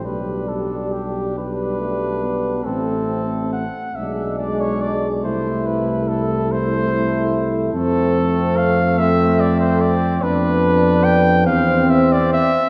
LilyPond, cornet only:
\new Staff \with { instrumentName = "Cornet" } { \time 6/8 \key a \dorian \tempo 4. = 47 b'8 a'8 g'8 b'4. | a'4 fis''8 e''8 d''16 cis''16 d''8 | c''8 b'8 a'8 c''4~ c''16 r16 | \key f \lydian a'4 f''8 e''8 d''16 c''16 d''8 |
b'4 g''8 f''8 e''16 d''16 e''8 | }